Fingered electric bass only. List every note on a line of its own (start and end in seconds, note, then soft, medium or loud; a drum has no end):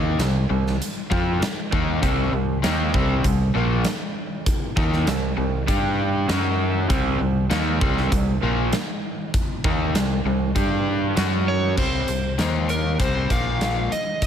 0.00 0.18 D#2 medium
0.19 0.48 C2 medium
0.50 0.78 C2 medium
1.11 1.39 F2 medium
1.41 muted fingered electric bass stroke soft
1.73 2.01 D#2 medium
2.03 2.31 C2 medium
2.32 2.61 C2 medium
2.64 2.92 D#2 medium
2.94 3.22 C2 medium
3.24 3.52 C2 medium
3.55 3.83 A#1 medium
4.77 5.05 D#2 medium
5.07 5.35 C2 medium
5.37 5.66 C2 medium
5.68 6.25 G2 medium
6.29 6.86 F#2 medium
6.90 7.18 C2 medium
7.20 7.49 C2 medium
7.51 7.79 D#2 medium
7.81 8.10 C2 medium
8.12 8.40 C2 medium
8.43 8.71 A#1 medium
9.64 9.93 D#2 medium
9.94 10.23 C2 medium
10.25 10.53 C2 medium
10.56 11.13 G2 medium
11.17 11.74 F#2 medium
11.78 12.06 C2 medium
12.08 12.37 C2 medium
12.39 12.96 D#2 medium
12.99 13.28 C2 medium
13.30 13.87 A#1 medium
13.92 muted fingered electric bass stroke soft